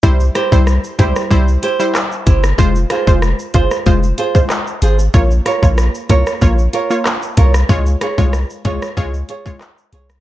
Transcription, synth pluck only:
\new Staff \with { instrumentName = "Synth pluck" } { \time 4/4 \key c \phrygian \tempo 4 = 94 <g e' c''>16 r8 <g e' c''>16 r8 <g e' c''>16 r16 <g e' c''>16 r8 <g e' c''>16 r4 | <aes f' c''>16 r8 <aes f' c''>16 r8 <aes f' c''>16 r16 <aes f' c''>16 r8 <aes f' c''>16 r4 | <bes f' des''>16 r8 <bes f' des''>16 r8 <bes f' des''>16 r16 <bes f' des''>16 r8 <bes f' des''>16 r4 | <aes f' des''>16 r8 <aes f' des''>16 r8 <aes f' des''>16 r16 <aes f' des''>16 r8 <aes f' des''>16 r4 | }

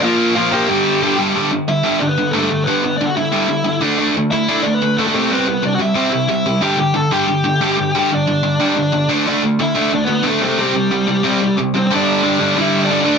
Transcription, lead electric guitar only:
\new Staff \with { instrumentName = "Lead electric guitar" } { \time 4/4 \key g \major \tempo 4 = 182 <f' f''>4 <f' f''>8 <g' g''>2 r8 | r4 <e' e''>4 <d' d''>16 <b b'>8. <a a'>16 <a a'>8. | <b b'>4 <d' d''>16 <fis' fis''>16 <e' e''>2 r8 | r4 <e' e''>4 <d' d''>16 <b b'>8. <a a'>16 <a a'>8. |
<b b'>4 <d' d''>16 <fis' fis''>16 <e' e''>4. <e' e''>4 | <g' g''>8 <g' g''>8 <a' a''>8 <g' g''>2~ <g' g''>8 | <g' g''>8 <d' d''>2. r8 | r4 <e' e''>4 <d' d''>16 <b b'>8. <a a'>8 <a a'>8 |
<g g'>2. r8 <c' c''>16 <c' c''>16 | <d' d''>2 <e' e''>8. <d' d''>8 <d' d''>8 r16 | }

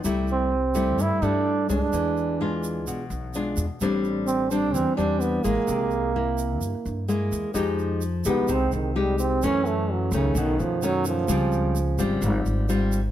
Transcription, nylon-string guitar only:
\new Staff \with { instrumentName = "Nylon-string guitar" } { \time 4/4 \key c \major \tempo 4 = 128 << { <g a e'>4 r8 <g a e'>4 <g a e'>4 <gis d'>8~ | <gis d'>4 <gis d' f'>4. r8 <gis d' f'>8 r8 | <g c' d'>4. <g c' d'>4 <g c' d'>4 <gis bes e'>8~ | <gis bes e'>4 <bes e'>2 <aes bes e'>4 |
\key f \minor <aes ees' g'>4 r8 <aes ees' g'>4. <aes ees' g'>4 | <fes a des'>4. <ees a des'>4. <dis a cis'>4 | <g c' f'>4 r8 <g c' f'>4. <g c' f'>8 r8 | } \\ { c2 g,2 | e2 b,2 | a,2 e2 | c2 r2 |
f2 c2 | ges,2 b,2 | des2 aes,2 | } >> }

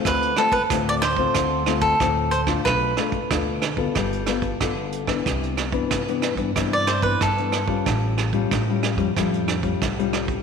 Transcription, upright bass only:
\new Staff \with { instrumentName = "Upright bass" } { \clef bass \time 4/4 \key g \mixolydian \tempo 4 = 92 d,8 r8 d,4 d,4 d,4 | b,,8 r8 d,4 g,,4 g,,4 | \key c \major c,4 c8. g,16 g,4 g,4 | a,,4 a,8. eis,16 eis,4 bis,,4 | }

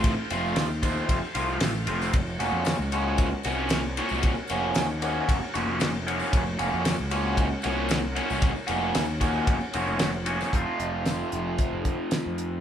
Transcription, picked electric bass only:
\new Staff \with { instrumentName = "Picked electric bass" } { \clef bass \time 4/4 \tempo 4 = 114 a,,16 r16 f,,8 ees,4 f,,16 r16 c,8 a,,8 f,,8 | f,,8 f,,16 f,8 des,4~ des,16 c,4~ c,16 c,16~ | c,16 r16 f,,8 ees,4 f,,16 r16 f,,16 f,,4~ f,,16 | f,,8 f,,16 f,8 des,4~ des,16 c,4~ c,16 c,16~ |
c,16 r16 f,,8 ees,4 f,,16 r16 f,,16 f,,4~ f,,16 | f,,16 r16 f,,4 f,,8 r16 f,,8 r8 f,8. | }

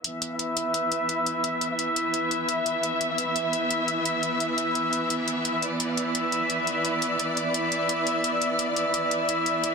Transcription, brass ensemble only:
\new Staff \with { instrumentName = "Brass ensemble" } { \time 4/4 \key c \major \tempo 4 = 172 r8. <e' b' e''>2.~ <e' b' e''>16~ | <e' b' e''>8. <e' b' e''>2.~ <e' b' e''>16~ | <e' b' e''>8. <e' b' e''>2.~ <e' b' e''>16~ | <e' b' e''>8. <e' b' e''>2 r8. <e' b' e''>16 <e' b' e''>16 |
r8. <e' b' e''>2.~ <e' b' e''>16~ | <e' b' e''>8. <e' b' e''>2.~ <e' b' e''>16~ | <e' b' e''>8. <e' b' e''>2.~ <e' b' e''>16 | }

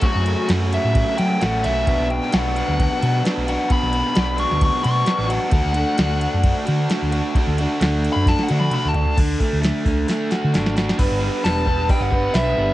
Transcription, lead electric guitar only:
\new Staff \with { instrumentName = "Lead electric guitar" } { \time 4/4 \key d \lydian \tempo 4 = 132 fis'4 r8 e''4 g''8 fis''8 e''8~ | e''8 g''8 fis''2 r8 fis''8 | b''4. cis'''8 cis'''8 cis'''4 fis''8~ | fis''2~ fis''8 r4. |
r4 \tuplet 3/2 { r4 b''8 a''8 fis''8 b''8 b''8 a''4 } | r1 | r4 a''4 g''16 fis''8. e''4 | }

